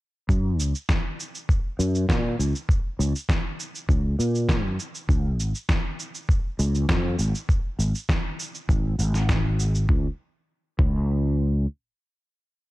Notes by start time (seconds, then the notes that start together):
0.29 F#2, kick, shaker
0.60 C#2, shaker
0.75 shaker
0.89 kick, snare, shaker
1.20 shaker
1.35 shaker
1.49 kick, shaker
1.79 F#2, shaker
1.95 shaker
2.09 A#2, kick, snare, shaker
2.39 C#2, shaker
2.55 shaker
2.69 kick, shaker
2.99 C#2, shaker
3.16 shaker
3.29 kick, snare, shaker
3.60 shaker
3.75 shaker
3.89 C#2, kick, shaker
4.19 A#2, shaker
4.35 shaker
4.49 kick, snare, shaker
4.64 F#2
4.79 shaker
4.95 shaker
5.09 C#2, kick, shaker
5.39 G#1, shaker
5.55 shaker
5.69 kick, snare, shaker
6.00 shaker
6.15 shaker
6.29 kick, shaker
6.59 C#2, shaker
6.75 shaker
6.89 F2, kick, snare, shaker
7.19 G#1, shaker
7.35 shaker
7.49 kick, shaker
7.79 G#1, shaker
7.95 shaker
8.09 kick, snare, shaker
8.40 shaker
8.55 shaker
8.69 G#1, kick, shaker
8.99 G#1, shaker
9.14 snare, shaker
9.29 kick, snare, shaker
9.60 shaker
9.75 shaker
9.89 C#2, kick
10.79 C#2, kick